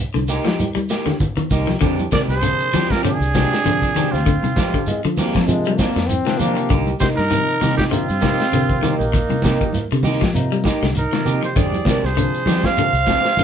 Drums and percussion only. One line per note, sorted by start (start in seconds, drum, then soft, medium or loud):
0.14 closed hi-hat soft
0.14 high conga medium
0.14 shekere soft
0.28 snare soft
0.28 closed hi-hat medium
0.28 shekere medium
0.45 snare medium
0.45 closed hi-hat soft
0.45 high conga medium
0.45 shekere soft
0.59 closed hi-hat medium
0.59 high conga medium
0.59 shekere medium
0.76 closed hi-hat soft
0.76 high conga medium
0.76 shekere soft
0.89 snare medium
0.89 closed hi-hat medium
0.89 shekere medium
1.06 snare soft
1.06 closed hi-hat soft
1.06 low conga loud
1.06 shekere soft
1.20 kick medium
1.20 closed hi-hat medium
1.20 low conga loud
1.20 shekere medium
1.37 closed hi-hat soft
1.37 low conga medium
1.37 shekere soft
1.51 kick medium
1.51 open hi-hat medium
1.51 low conga medium
1.51 shekere medium
1.68 snare soft
1.68 low conga medium
1.68 shekere soft
1.81 kick loud
1.81 closed hi-hat medium
1.81 shekere medium
1.99 closed hi-hat soft
1.99 high conga medium
1.99 shekere soft
2.12 kick medium
2.12 snare medium
2.12 closed hi-hat soft
2.12 high conga medium
2.12 low conga medium
2.12 shekere medium
2.29 snare soft
2.29 closed hi-hat soft
2.29 shekere soft
2.43 closed hi-hat medium
2.43 shekere loud
2.60 shekere soft
2.73 open hi-hat medium
2.73 high conga medium
2.73 low conga medium
2.73 shekere medium
2.90 kick medium
2.90 snare medium
2.90 closed hi-hat soft
2.90 shekere soft
3.04 closed hi-hat medium
3.04 shekere loud
3.22 closed hi-hat soft
3.22 shekere soft
3.35 kick medium
3.35 snare medium
3.35 closed hi-hat medium
3.35 high conga medium
3.35 shekere medium
3.52 snare medium
3.52 closed hi-hat soft
3.52 shekere soft
3.66 closed hi-hat medium
3.66 shekere medium
3.82 kick medium
3.82 closed hi-hat soft
3.82 shekere soft
3.96 closed hi-hat medium
3.96 low conga medium
3.96 shekere medium
4.14 snare soft
4.14 shekere soft
4.27 kick medium
4.27 closed hi-hat medium
4.27 shekere medium
4.43 high conga medium
4.43 shekere soft
4.56 kick medium
4.56 snare medium
4.56 closed hi-hat medium
4.56 high conga loud
4.56 shekere medium
4.74 kick medium
4.74 shekere soft
4.87 closed hi-hat medium
4.87 high conga medium
4.87 shekere medium
5.04 closed hi-hat soft
5.04 shekere soft
5.17 open hi-hat medium
5.17 high conga medium
5.17 low conga medium
5.17 shekere medium
5.35 kick medium
5.35 snare medium
5.35 closed hi-hat soft
5.35 shekere soft
5.48 closed hi-hat medium
5.48 shekere medium
5.65 closed hi-hat soft
5.65 shekere soft
5.79 kick medium
5.79 snare medium
5.79 closed hi-hat medium
5.79 high conga medium
5.79 shekere medium
5.96 snare medium
5.96 shekere soft
6.09 closed hi-hat medium
6.09 high conga medium
6.09 shekere medium
6.26 snare medium
6.26 closed hi-hat soft
6.26 shekere soft
6.39 closed hi-hat medium
6.39 low conga medium
6.39 shekere medium
6.57 closed hi-hat soft
6.57 shekere soft
6.70 kick medium
6.70 closed hi-hat medium
6.70 shekere medium
6.87 closed hi-hat soft
6.87 high conga medium
6.87 shekere soft
7.00 kick medium
7.00 snare medium
7.00 closed hi-hat medium
7.00 high conga medium
7.00 shekere medium
7.18 snare soft
7.18 closed hi-hat soft
7.18 shekere soft
7.31 closed hi-hat medium
7.31 shekere medium
7.49 shekere soft
7.62 open hi-hat medium
7.62 high conga medium
7.62 low conga medium
7.62 shekere medium
7.79 kick medium
7.79 snare medium
7.79 closed hi-hat soft
7.79 shekere soft
7.92 closed hi-hat medium
7.92 shekere medium
8.09 closed hi-hat soft
8.09 shekere soft
8.22 kick medium
8.22 snare medium
8.22 closed hi-hat soft
8.22 high conga medium
8.22 shekere medium
8.39 snare medium
8.39 closed hi-hat soft
8.39 shekere soft
8.52 closed hi-hat medium
8.52 low conga medium
8.52 shekere medium
8.69 kick medium
8.69 closed hi-hat soft
8.69 shekere soft
8.83 closed hi-hat medium
8.83 high conga medium
8.83 low conga medium
8.83 shekere medium
9.01 shekere soft
9.14 kick loud
9.14 closed hi-hat medium
9.14 shekere medium
9.29 high conga medium
9.29 shekere soft
9.42 kick medium
9.42 snare medium
9.42 closed hi-hat medium
9.42 high conga loud
9.42 low conga medium
9.42 shekere medium
9.61 kick medium
9.61 shekere soft
9.73 closed hi-hat medium
9.73 high conga medium
9.73 shekere medium
9.92 closed hi-hat soft
9.92 shekere soft
10.03 open hi-hat medium
10.03 high conga medium
10.03 low conga medium
10.03 shekere medium
10.22 kick medium
10.22 snare medium
10.22 closed hi-hat soft
10.22 shekere soft
10.35 closed hi-hat medium
10.35 shekere medium
10.52 closed hi-hat soft
10.52 shekere soft
10.64 kick medium
10.64 snare medium
10.64 closed hi-hat medium
10.64 high conga loud
10.64 shekere medium
10.83 snare medium
10.83 shekere soft
10.95 closed hi-hat medium
10.95 low conga medium
10.95 shekere medium
11.12 snare medium
11.12 closed hi-hat soft
11.12 shekere soft
11.26 closed hi-hat medium
11.26 low conga medium
11.26 shekere medium
11.43 closed hi-hat soft
11.43 shekere soft
11.56 kick loud
11.56 closed hi-hat medium
11.56 shekere medium
11.73 closed hi-hat soft
11.73 high conga medium
11.73 shekere soft
11.85 kick medium
11.85 snare medium
11.85 closed hi-hat medium
11.85 high conga loud
11.85 low conga medium
11.85 shekere medium
12.04 snare soft
12.04 closed hi-hat soft
12.04 shekere soft
12.17 closed hi-hat medium
12.17 shekere medium
12.34 shekere soft
12.46 snare soft
12.46 open hi-hat medium
12.46 high conga medium
12.46 low conga medium
12.46 shekere medium
12.64 kick medium
12.64 snare medium
12.64 closed hi-hat soft
12.64 shekere soft
12.77 closed hi-hat medium
12.77 shekere medium
12.94 closed hi-hat soft
12.94 shekere soft
13.07 kick medium
13.07 snare medium
13.07 closed hi-hat soft
13.07 high conga loud
13.07 shekere medium
13.24 snare medium
13.24 closed hi-hat soft
13.24 shekere soft
13.37 snare soft
13.37 closed hi-hat medium
13.37 high conga medium
13.37 shekere medium